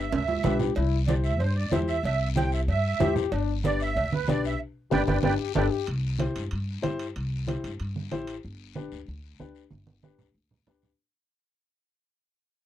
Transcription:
Already playing: upright bass G1, accordion E5
0.12 upright bass D2, accordion E5, cowbell, high timbale, long guiro
0.28 low timbale
0.44 upright bass B1, upright piano D4 G4 B4, trombone G4, cowbell, high conga, low conga, low timbale, short guiro
0.59 low conga, low timbale, short guiro
0.75 upright bass C2, trombone E4, cowbell, long guiro
1.07 upright piano E4 G4 C5, accordion D5, cowbell, high conga, short guiro
1.24 accordion E5, short guiro
1.40 upright bass G2, accordion C5, cowbell, long guiro
1.56 accordion D5
1.71 upright bass E2, upright piano E4 G4 C5, accordion E5, cowbell, high conga, low timbale, short guiro
1.88 accordion E5, short guiro
2.03 upright bass C2, accordion E5, cowbell, long guiro
2.21 accordion E5
2.35 upright piano E4 G4 C5, accordion G5, cowbell, high conga, short guiro
2.52 accordion E5, short guiro
2.68 upright bass G2, accordion E5, cowbell, long guiro
3.00 upright bass E2, upright piano E4 G4 C5, trombone G4, cowbell, high conga, low conga, low timbale, short guiro
3.16 low conga, short guiro
3.32 upright bass G1, trombone D4, cowbell, long guiro
3.64 upright piano D4 G4 B4, accordion D5, cowbell, high conga, short guiro
3.80 accordion E5, short guiro
3.96 upright bass D2, cowbell, long guiro
4.12 accordion B4, high conga
4.27 upright bass B1, upright piano D4 G4 B4, accordion D5, cowbell, high conga, short guiro
4.44 accordion E5, short guiro
4.91 upright bass G1, upright piano D4 G4 B4, trombone G4, accordion B4 D5 G5, high conga, high timbale, long guiro
5.07 upright bass G1, upright piano D4 G4 B4, accordion B4 D5 G5, high conga, high timbale, long guiro
5.23 upright bass G1, trombone D4, upright piano D4 G4 B4, accordion B4 D5 G5, high conga, high timbale, long guiro
5.39 trombone G4
5.55 upright bass G1, upright piano D4 G4 B4, trombone A4, accordion B4 D5 G5, high conga, high timbale, long guiro
5.71 trombone G4
5.87 upright bass C2, high timbale, long guiro
6.19 upright piano E4 G4 C5, high conga, high timbale, short guiro
6.36 upright bass G2, high timbale, short guiro
6.51 upright bass G2, high timbale, long guiro
6.82 upright bass G2, upright piano E4 G4 C5, high conga, high timbale, short guiro
6.99 high timbale, short guiro
7.16 upright bass C2, high timbale, long guiro
7.47 upright piano E4 G4 C5, high conga, high timbale, short guiro
7.64 upright bass G2, high timbale, short guiro
7.80 upright bass G2, high timbale, long guiro
7.96 high conga
8.11 upright bass A1, upright piano E4 G4 C5, high conga, high timbale, short guiro
8.27 high timbale, short guiro
8.43 upright bass G1, long guiro
8.75 upright piano D4 G4 B4, high conga, short guiro
8.92 upright bass D2, short guiro
9.06 upright bass D2, long guiro
9.38 upright bass D2, upright piano D4 G4 B4, high conga, short guiro
9.55 short guiro
9.71 upright bass G1, high conga, long guiro
9.87 high conga
10.03 upright piano D4 G4 B4, high conga, short guiro
10.19 upright bass D2, low conga, short guiro
10.34 upright bass D2, long guiro
10.51 low conga
10.67 upright bass D2, upright piano D4 G4 B4, low conga, short guiro
10.82 low conga, short guiro

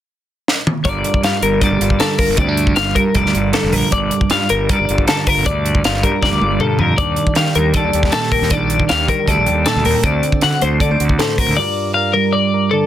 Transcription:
0.48 snare
0.67 mid tom
0.85 fingered electric bass G1, clean electric guitar G2 G3 D4 F4 A#4 D5, kick, closed hi-hat
1.04 closed hi-hat
1.14 kick
1.23 fingered electric bass G2, clean electric guitar F4 F5, snare, closed hi-hat
1.42 fingered electric bass G1, clean electric guitar G3 A#4, closed hi-hat
1.61 fingered electric bass G2, clean electric guitar A#4 D5, kick, closed hi-hat
1.71 fingered electric bass G1
1.81 fingered electric bass G1, clean electric guitar F4, closed hi-hat
1.90 kick
1.99 clean electric guitar D3 A4 A#4, snare, closed hi-hat
2.18 clean electric guitar F4 A#4, kick, open hi-hat
2.29 fingered electric bass G1
2.37 fingered electric bass D2, clean electric guitar G2 C4 D5, kick, closed hi-hat
2.48 clean electric guitar D4
2.57 closed hi-hat
2.67 kick
2.76 fingered electric bass G1, clean electric guitar F4 F5, snare, closed hi-hat
2.95 fingered electric bass G2, clean electric guitar G3 A#4, kick, closed hi-hat
3.15 fingered electric bass F1, clean electric guitar A#4 D5, kick, closed hi-hat
3.25 fingered electric bass D2, snare
3.34 fingered electric bass G1, clean electric guitar F4, closed hi-hat
3.52 clean electric guitar D3 A4 A#4, snare, closed hi-hat
3.64 fingered electric bass F1
3.73 fingered electric bass A#1, clean electric guitar F4 A#4, open hi-hat
3.91 fingered electric bass G1, clean electric guitar G2 D4 D5, kick, closed hi-hat
4.11 closed hi-hat
4.21 kick
4.30 fingered electric bass G2, clean electric guitar F4 F5, snare, closed hi-hat
4.49 fingered electric bass G1, clean electric guitar G3 A#4, closed hi-hat
4.69 fingered electric bass G2, clean electric guitar A#4 D5, kick, closed hi-hat
4.79 fingered electric bass G1
4.89 fingered electric bass G1, clean electric guitar F4, closed hi-hat
4.98 kick
5.08 clean electric guitar D3 A4 A#4, snare, closed hi-hat
5.27 clean electric guitar F4 A#4, kick, open hi-hat
5.37 fingered electric bass G1
5.46 fingered electric bass D2, clean electric guitar G2 D4 D5, kick, closed hi-hat
5.66 closed hi-hat
5.75 kick
5.84 fingered electric bass G1, clean electric guitar F4 F5, snare, closed hi-hat
6.03 fingered electric bass G2, clean electric guitar G3 A#4, kick, closed hi-hat
6.23 fingered electric bass F1, clean electric guitar A#4 D5, kick, snare
6.32 fingered electric bass D2
6.41 fingered electric bass G1, clean electric guitar F4, high tom
6.59 fingered electric bass G2, clean electric guitar D3 A4 A#4, mid tom
6.79 fingered electric bass F2, clean electric guitar F4 A#4, floor tom
6.98 fingered electric bass D#2, clean electric guitar D#3 D4 D5, kick, closed hi-hat
7.16 closed hi-hat
7.27 kick
7.35 fingered electric bass D#3, clean electric guitar G4 F5, snare, closed hi-hat
7.46 snare
7.55 fingered electric bass D#2, clean electric guitar G3 A#4, closed hi-hat
7.74 fingered electric bass D#3, clean electric guitar A4 D5, kick, closed hi-hat
7.84 fingered electric bass D#2
7.93 fingered electric bass D#2, clean electric guitar G4, closed hi-hat
8.03 kick, snare
8.12 clean electric guitar A#2 A4, snare, closed hi-hat
8.23 snare
8.32 clean electric guitar G4 A#4, kick, open hi-hat
8.42 fingered electric bass D#2, snare
8.50 fingered electric bass A#1, clean electric guitar D#3 D4 D5, kick, closed hi-hat
8.70 closed hi-hat
8.80 kick
8.89 fingered electric bass D#2, clean electric guitar G4 F5, snare, closed hi-hat
9.08 fingered electric bass D#3, clean electric guitar G3 A#4, kick, closed hi-hat
9.27 fingered electric bass D2, clean electric guitar A4 D5, kick, closed hi-hat
9.38 fingered electric bass A#1
9.46 fingered electric bass D#2, clean electric guitar G4, closed hi-hat
9.65 clean electric guitar A#2 A4, snare, closed hi-hat
9.76 fingered electric bass D2
9.85 fingered electric bass D#2, clean electric guitar G4 A#4, open hi-hat
10.03 fingered electric bass D2, clean electric guitar D3 C4 D5, kick, closed hi-hat
10.23 closed hi-hat
10.32 kick
10.41 fingered electric bass D3, clean electric guitar F#4 F#5, snare, closed hi-hat
10.61 fingered electric bass D2, clean electric guitar A3 C5, closed hi-hat
10.80 fingered electric bass D3, clean electric guitar A4 D5, kick, closed hi-hat
10.91 fingered electric bass D2, clean electric guitar C5
11.00 fingered electric bass D2, clean electric guitar F#4, closed hi-hat
11.09 kick
11.18 clean electric guitar A2 A4 C5, snare, closed hi-hat
11.38 clean electric guitar F#4 A#4, kick, open hi-hat
11.49 fingered electric bass D2
11.57 clean electric guitar G2 G3 F4 A#4 D5
11.94 clean electric guitar A#4 F5
12.14 clean electric guitar G3 A#4
12.33 clean electric guitar D5
12.54 clean electric guitar A#4
12.71 clean electric guitar D3 A4 D5

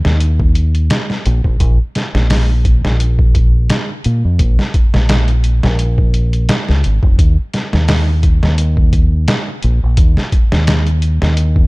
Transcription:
0.05 fingered electric bass D#2, snare
0.20 closed hi-hat
0.40 kick
0.55 closed hi-hat
0.75 closed hi-hat
0.90 snare, closed hi-hat
1.10 snare
1.26 fingered electric bass A#1, closed hi-hat
1.44 fingered electric bass A#1, kick
1.60 fingered electric bass A#1, kick, closed hi-hat
1.95 snare, closed hi-hat
2.15 fingered electric bass A#1, snare
2.30 snare, open hi-hat
2.65 kick, closed hi-hat
2.85 fingered electric bass A#1, snare
3.00 closed hi-hat
3.19 kick
3.35 kick, closed hi-hat
3.70 snare, closed hi-hat
4.04 fingered electric bass A#2, closed hi-hat
4.25 fingered electric bass F2
4.39 fingered electric bass A#1, kick, closed hi-hat
4.59 snare
4.74 kick, closed hi-hat
4.94 fingered electric bass A#1, snare
5.09 snare, closed hi-hat
5.28 closed hi-hat
5.44 closed hi-hat
5.63 fingered electric bass A#1, snare
5.79 closed hi-hat
5.98 kick
6.14 closed hi-hat
6.33 closed hi-hat
6.49 snare, closed hi-hat
6.69 fingered electric bass C#2, snare
6.84 fingered electric bass G#1, closed hi-hat
7.03 fingered electric bass F1, kick
7.19 fingered electric bass D#2, kick, closed hi-hat
7.54 snare, closed hi-hat
7.73 fingered electric bass D#2, snare
7.88 snare, open hi-hat
8.23 kick, closed hi-hat
8.43 fingered electric bass D#2, snare
8.58 closed hi-hat
8.77 kick
8.93 kick, closed hi-hat
9.28 snare, closed hi-hat
9.63 fingered electric bass A#1, closed hi-hat
9.83 fingered electric bass A#1
9.97 fingered electric bass D#2, kick, closed hi-hat
10.17 snare
10.32 kick, closed hi-hat
10.52 fingered electric bass D#2, snare
10.67 snare, closed hi-hat
10.87 closed hi-hat
11.02 closed hi-hat
11.22 fingered electric bass D#2, snare
11.37 closed hi-hat
11.56 kick

